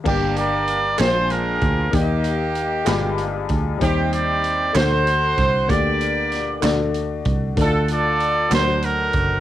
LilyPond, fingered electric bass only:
\new Staff \with { instrumentName = "Fingered electric bass" } { \clef bass \time 6/8 \key g \minor \tempo 4. = 64 g,,4. bes,,4 d,8 | ees,4. g,,4 d,8 | ees,4. d,4 c,8 | d,4. d,4 c,8 |
d,4. d,4 fis,,8 | }